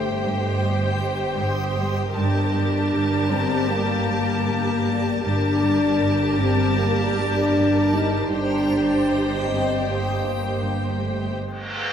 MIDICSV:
0, 0, Header, 1, 10, 480
1, 0, Start_track
1, 0, Key_signature, -2, "minor"
1, 0, Tempo, 769231
1, 1347, Time_signature, 4, 2, 24, 8
1, 7444, End_track
2, 0, Start_track
2, 0, Title_t, "Violin section"
2, 0, Program_c, 0, 48
2, 0, Note_on_c, 0, 79, 51
2, 1320, Note_off_c, 0, 79, 0
2, 1345, Note_on_c, 0, 81, 57
2, 3241, Note_off_c, 0, 81, 0
2, 3263, Note_on_c, 0, 81, 59
2, 5160, Note_off_c, 0, 81, 0
2, 5191, Note_on_c, 0, 79, 49
2, 7084, Note_off_c, 0, 79, 0
2, 7444, End_track
3, 0, Start_track
3, 0, Title_t, "Synth texture"
3, 0, Program_c, 1, 99
3, 0, Note_on_c, 1, 72, 47
3, 0, Note_on_c, 1, 75, 49
3, 0, Note_on_c, 1, 79, 44
3, 1318, Note_off_c, 1, 79, 0
3, 1320, Note_off_c, 1, 75, 0
3, 1323, Note_off_c, 1, 72, 0
3, 1352, Note_on_c, 1, 74, 50
3, 1353, Note_on_c, 1, 70, 47
3, 1354, Note_on_c, 1, 81, 53
3, 3269, Note_off_c, 1, 74, 0
3, 3269, Note_off_c, 1, 81, 0
3, 3270, Note_off_c, 1, 70, 0
3, 3276, Note_on_c, 1, 81, 52
3, 3280, Note_on_c, 1, 70, 50
3, 3285, Note_on_c, 1, 74, 51
3, 5167, Note_off_c, 1, 81, 0
3, 5169, Note_off_c, 1, 70, 0
3, 5171, Note_off_c, 1, 74, 0
3, 5188, Note_on_c, 1, 75, 48
3, 5188, Note_on_c, 1, 79, 51
3, 5191, Note_on_c, 1, 72, 46
3, 7108, Note_off_c, 1, 75, 0
3, 7108, Note_off_c, 1, 79, 0
3, 7109, Note_off_c, 1, 72, 0
3, 7444, End_track
4, 0, Start_track
4, 0, Title_t, "Violin section"
4, 0, Program_c, 2, 48
4, 0, Note_on_c, 2, 72, 50
4, 1323, Note_off_c, 2, 72, 0
4, 1342, Note_on_c, 2, 70, 55
4, 3240, Note_off_c, 2, 70, 0
4, 3268, Note_on_c, 2, 70, 60
4, 5163, Note_off_c, 2, 70, 0
4, 5187, Note_on_c, 2, 72, 55
4, 7082, Note_off_c, 2, 72, 0
4, 7444, End_track
5, 0, Start_track
5, 0, Title_t, "Viola section"
5, 0, Program_c, 3, 48
5, 0, Note_on_c, 3, 67, 49
5, 1321, Note_off_c, 3, 67, 0
5, 1347, Note_on_c, 3, 67, 59
5, 3242, Note_off_c, 3, 67, 0
5, 3269, Note_on_c, 3, 67, 61
5, 5163, Note_off_c, 3, 67, 0
5, 5189, Note_on_c, 3, 67, 47
5, 7083, Note_off_c, 3, 67, 0
5, 7444, End_track
6, 0, Start_track
6, 0, Title_t, "French horn section"
6, 0, Program_c, 4, 60
6, 0, Note_on_c, 4, 57, 65
6, 603, Note_off_c, 4, 57, 0
6, 1347, Note_on_c, 4, 62, 76
6, 2042, Note_off_c, 4, 62, 0
6, 2060, Note_on_c, 4, 60, 76
6, 2304, Note_off_c, 4, 60, 0
6, 2304, Note_on_c, 4, 58, 79
6, 3266, Note_off_c, 4, 58, 0
6, 3267, Note_on_c, 4, 62, 77
6, 3973, Note_off_c, 4, 62, 0
6, 3990, Note_on_c, 4, 60, 67
6, 4222, Note_on_c, 4, 58, 68
6, 4229, Note_off_c, 4, 60, 0
6, 4464, Note_on_c, 4, 62, 69
6, 4465, Note_off_c, 4, 58, 0
6, 4942, Note_on_c, 4, 63, 74
6, 4946, Note_off_c, 4, 62, 0
6, 5184, Note_off_c, 4, 63, 0
6, 5184, Note_on_c, 4, 62, 64
6, 5796, Note_off_c, 4, 62, 0
6, 5902, Note_on_c, 4, 60, 53
6, 6140, Note_off_c, 4, 60, 0
6, 6155, Note_on_c, 4, 58, 49
6, 6864, Note_on_c, 4, 57, 44
6, 6871, Note_off_c, 4, 58, 0
6, 7105, Note_off_c, 4, 57, 0
6, 7444, End_track
7, 0, Start_track
7, 0, Title_t, "Cello section"
7, 0, Program_c, 5, 48
7, 151, Note_on_c, 5, 43, 66
7, 294, Note_off_c, 5, 43, 0
7, 395, Note_on_c, 5, 55, 50
7, 537, Note_off_c, 5, 55, 0
7, 637, Note_on_c, 5, 43, 47
7, 778, Note_off_c, 5, 43, 0
7, 871, Note_on_c, 5, 43, 71
7, 1014, Note_off_c, 5, 43, 0
7, 1112, Note_on_c, 5, 55, 52
7, 1255, Note_off_c, 5, 55, 0
7, 1355, Note_on_c, 5, 43, 69
7, 1496, Note_off_c, 5, 43, 0
7, 1593, Note_on_c, 5, 43, 49
7, 1735, Note_off_c, 5, 43, 0
7, 1833, Note_on_c, 5, 43, 52
7, 1975, Note_off_c, 5, 43, 0
7, 2068, Note_on_c, 5, 43, 74
7, 2212, Note_off_c, 5, 43, 0
7, 2302, Note_on_c, 5, 55, 53
7, 2447, Note_off_c, 5, 55, 0
7, 2547, Note_on_c, 5, 43, 53
7, 2691, Note_off_c, 5, 43, 0
7, 2789, Note_on_c, 5, 43, 66
7, 2932, Note_off_c, 5, 43, 0
7, 3031, Note_on_c, 5, 55, 47
7, 3174, Note_off_c, 5, 55, 0
7, 3272, Note_on_c, 5, 43, 67
7, 3415, Note_off_c, 5, 43, 0
7, 3518, Note_on_c, 5, 43, 51
7, 3659, Note_off_c, 5, 43, 0
7, 3755, Note_on_c, 5, 43, 46
7, 3897, Note_off_c, 5, 43, 0
7, 3996, Note_on_c, 5, 43, 65
7, 4138, Note_off_c, 5, 43, 0
7, 4235, Note_on_c, 5, 55, 49
7, 4377, Note_off_c, 5, 55, 0
7, 4477, Note_on_c, 5, 43, 50
7, 4618, Note_off_c, 5, 43, 0
7, 4717, Note_on_c, 5, 43, 62
7, 4858, Note_off_c, 5, 43, 0
7, 4950, Note_on_c, 5, 55, 39
7, 5093, Note_off_c, 5, 55, 0
7, 5190, Note_on_c, 5, 43, 53
7, 5333, Note_off_c, 5, 43, 0
7, 5430, Note_on_c, 5, 43, 41
7, 5573, Note_off_c, 5, 43, 0
7, 5675, Note_on_c, 5, 43, 36
7, 5817, Note_off_c, 5, 43, 0
7, 5905, Note_on_c, 5, 43, 47
7, 6050, Note_off_c, 5, 43, 0
7, 6149, Note_on_c, 5, 55, 32
7, 6293, Note_off_c, 5, 55, 0
7, 6388, Note_on_c, 5, 43, 35
7, 6532, Note_off_c, 5, 43, 0
7, 6627, Note_on_c, 5, 43, 38
7, 6771, Note_off_c, 5, 43, 0
7, 6868, Note_on_c, 5, 55, 29
7, 7012, Note_off_c, 5, 55, 0
7, 7444, End_track
8, 0, Start_track
8, 0, Title_t, "Cello section"
8, 0, Program_c, 6, 48
8, 0, Note_on_c, 6, 43, 48
8, 1326, Note_off_c, 6, 43, 0
8, 1343, Note_on_c, 6, 43, 58
8, 3240, Note_off_c, 6, 43, 0
8, 3260, Note_on_c, 6, 43, 55
8, 5159, Note_off_c, 6, 43, 0
8, 5188, Note_on_c, 6, 43, 48
8, 7083, Note_off_c, 6, 43, 0
8, 7444, End_track
9, 0, Start_track
9, 0, Title_t, "Double bass section"
9, 0, Program_c, 7, 48
9, 0, Note_on_c, 7, 31, 49
9, 1322, Note_off_c, 7, 31, 0
9, 1346, Note_on_c, 7, 31, 56
9, 3242, Note_off_c, 7, 31, 0
9, 3263, Note_on_c, 7, 31, 53
9, 5160, Note_off_c, 7, 31, 0
9, 5190, Note_on_c, 7, 31, 48
9, 7084, Note_off_c, 7, 31, 0
9, 7444, End_track
10, 0, Start_track
10, 0, Title_t, "Reverse cymbal"
10, 0, Program_c, 8, 119
10, 7110, Note_on_c, 8, 60, 29
10, 7444, Note_off_c, 8, 60, 0
10, 7444, End_track
0, 0, End_of_file